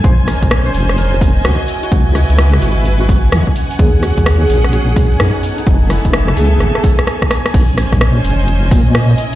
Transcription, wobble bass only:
X:1
M:4/4
L:1/16
Q:"Swing 16ths" 1/4=128
K:Bbm
V:1 name="Wobble bass" clef=bass
B,,,3 B,,,3 F,,,6 D,, z3 | D,,3 D,,3 A,,,6 _F,, z3 | E,,3 E,,3 B,,,6 G,, z3 | G,,,3 G,,,3 D,,2 =A,,, z6 z |
B,,,3 B,,,3 F,,,4 B,,4 z2 |]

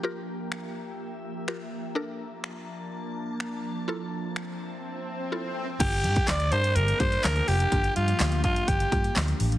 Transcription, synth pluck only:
X:1
M:4/4
L:1/16
Q:1/4=125
K:Gdor
V:1 name="Synth pluck"
[FGB]12 [FGB]4 | [DAB]16 | [EFA]12 [EFA]4 | [B,DFG]6 z4 [B,DFG]4- [B,DFG] z |
[B,DFG]6 z4 [B,DFG]4- [B,DFG] z |]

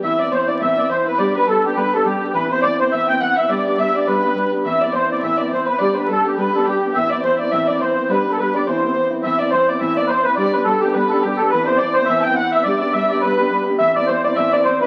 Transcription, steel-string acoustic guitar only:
X:1
M:4/4
L:1/8
Q:"Swing" 1/4=209
K:Am
V:1 name="Steel-string acoustic guitar"
[A,,E,B,CE] [B,CE] [E,B,CE] [B,CE] [A,,E,B,CE] [B,CE] [E,B,CE] [B,CE] | [G,B,DG] [B,DG] [G,B,DG] [B,DG] [G,B,DG] [B,DG] [G,B,DG] [B,DG] | [A,,E,B,CE] [B,CE] [E,B,CE] [B,CE] [A,,E,B,CE] [B,CE] [E,B,CE] [B,CE] | [G,B,DG] [B,DG] [G,B,DG] [B,DG] [G,B,DG] [B,DG] [G,B,DG] [B,DG] |
[A,,E,B,CE] [B,CE] [E,B,CE] [B,CE] [A,,E,B,CE] [B,CE] [E,B,CE] [B,CE] | [G,B,DG] [B,DG] [G,B,DG] [B,DG] [G,B,DG] [B,DG] [G,B,DG] [B,DG] | [A,,E,B,CE] [B,CE] [E,B,CE] [B,CE] [A,,E,B,CE] [B,CE] [E,B,CE] [B,CE] | [G,B,DG] [B,DG] [G,B,DG] [B,DG] [A,,E,B,CE] [B,CE] [E,B,CE] [B,CE] |
[A,,E,B,CE] [B,CE] [E,B,CE] [B,CE] [A,,E,B,CE] [B,CE] [E,B,CE] [B,CE] | [G,B,DG] [B,DG] [G,B,DG] [B,DG] [G,B,DG] [B,DG] [G,B,DG] [B,DG] | [A,,E,B,CE] [B,CE] [E,E] [B,CE] [A,,E,B,CE] [B,CE] [E,B,CE] [B,CE] | [G,B,DG] [B,DG] [G,B,DG] [B,DG] [G,B,DG] [B,DG] [G,B,DG] [B,DG] |
[A,,E,B,CE] [B,CE] [E,B,CE] [B,CE] [A,,E,B,CE] [B,CE] [E,B,CE] [CE] |]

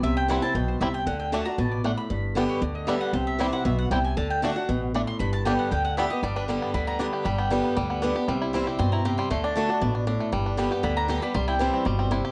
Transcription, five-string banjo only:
X:1
M:4/4
L:1/8
Q:1/4=233
K:G
V:1 name="Five-string banjo"
z2 [G,CE] z3 [G,CE] z | z2 [A,D] z3 [A,D] z | z2 [G,B,D] z3 [G,B,D] z | z2 [G,CE] z3 [G,CE] z |
z2 [A,D] z3 [A,D] z | z2 [G,B,D] z3 [G,B,D] z | G, D G, B, G, B, D G | G, B, G, B, G, B, D G |
G, E G, G C E G G, | A, D A, D D D D A, | G, D G, G B, D G G, | G, E G, C G, C E G |]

